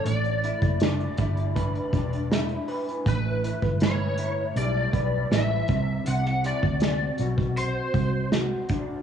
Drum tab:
HH |xxxxxxxxxxxxxxox|x-x-x-x-x-x-x-x-|x-x-x-x-x-x-x-x-|
SD |----o-------o---|----o-------o---|-o--o-------o---|
BD |---o--o-o-o-----|o--o------o---o-|---o---o--o---o-|